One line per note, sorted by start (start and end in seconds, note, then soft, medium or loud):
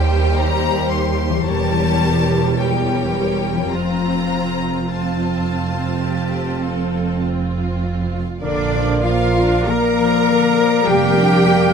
0.00 1.42 D#2 medium
0.00 1.43 D#2 medium
0.00 1.42 D#3 soft
0.00 1.43 G3 soft
0.00 3.06 G3 soft
0.00 1.37 G4 soft
0.00 1.42 G4 medium
0.00 1.43 G4 soft
0.00 1.42 C5 medium
0.00 1.49 C5 soft
0.00 0.38 G5 medium
0.38 0.92 A#5 medium
0.92 1.47 C6 medium
1.29 3.67 E3 soft
1.34 3.70 A#3 soft
1.38 3.72 G4 soft
1.43 3.71 E1 medium
1.43 3.71 E2 medium
1.43 2.55 A#4 soft
1.43 3.74 C#5 soft
1.43 2.56 C#5 soft
1.47 2.55 G3 medium
1.47 2.55 G4 medium
1.47 2.58 A5 medium
2.57 3.70 G3 soft
2.57 3.70 G4 soft
2.57 3.69 A#4 soft
2.57 3.69 C#5 soft
2.57 3.72 G5 medium
3.54 7.44 F3 soft
3.58 7.48 C4 soft
3.62 7.52 F4 soft
3.66 4.85 F4 soft
3.66 7.56 C5 soft
3.66 4.87 C5 soft
3.71 8.18 F1 soft
3.71 8.17 F2 soft
3.71 4.87 C4 soft
3.71 4.85 F4 soft
3.71 4.88 A#5 medium
4.86 8.17 C4 soft
4.86 6.00 F4 soft
4.86 8.18 F4 soft
4.86 7.22 A5 soft
6.02 6.63 G4 soft
6.62 7.22 A4 soft
7.22 8.42 F4 soft
8.41 9.48 A#1 medium
8.41 11.73 A#2 soft
8.41 9.00 D3 medium
8.41 8.72 D3 soft
8.41 11.73 A#3 medium
8.41 9.01 D4 medium
8.41 11.73 A#4 soft
8.41 9.06 D5 medium
8.41 11.73 D5 medium
8.41 9.01 D5 medium
8.41 9.02 D5 medium
8.41 11.73 F5 soft
8.75 9.06 F3 soft
9.03 9.68 F3 medium
9.03 9.38 A#3 soft
9.03 9.68 F4 medium
9.03 10.27 D5 soft
9.03 9.66 F5 medium
9.03 9.71 F5 medium
9.03 9.68 F5 medium
9.40 9.70 D4 soft
9.65 10.85 F3 soft
9.65 10.85 A#3 medium
9.65 10.86 A#4 medium
9.65 10.83 A#5 medium
9.65 10.86 A#5 medium
9.69 10.00 A#3 soft
9.69 10.87 A#5 medium
10.02 10.30 F3 soft
10.29 10.59 D3 soft
10.29 11.43 D5 soft
10.60 10.88 F3 medium
10.83 11.73 F1 medium
10.83 11.73 F3 soft
10.83 11.73 G3 medium
10.83 11.73 G4 medium
10.83 11.73 G5 medium
10.88 11.14 A#3 medium
11.17 11.45 D4 soft
11.45 11.73 A#3 soft
11.45 11.73 D5 soft